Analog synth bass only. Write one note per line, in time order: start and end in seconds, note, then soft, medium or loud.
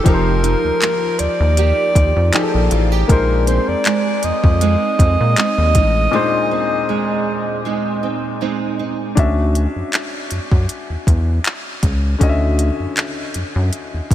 0.06 0.55 F1 loud
0.64 0.71 D#2 soft
1.20 1.28 D#2 soft
1.40 1.72 D#2 loud
1.96 2.13 D#2 medium
2.16 2.31 F2 loud
2.54 2.69 A#1 medium
2.72 3.04 A1 loud
3.09 3.59 A#1 loud
3.68 3.75 F2 soft
4.24 4.32 F2 soft
4.44 4.76 F2 medium
4.99 5.17 F2 loud
5.20 5.35 A#2 loud
5.58 5.77 D#2 medium
5.75 6.08 A1 medium
9.17 9.67 D2 loud
9.76 9.83 F#2 soft
10.31 10.39 F#2 soft
10.52 10.66 F#2 medium
10.90 10.97 E2 soft
11.07 11.39 E2 loud
11.83 12.15 C#2 medium
12.21 12.71 D2 loud
12.80 12.87 F#2 soft
13.35 13.43 F#2 soft
13.56 13.70 F#2 medium
13.94 14.01 E2 soft
14.11 14.15 E2 medium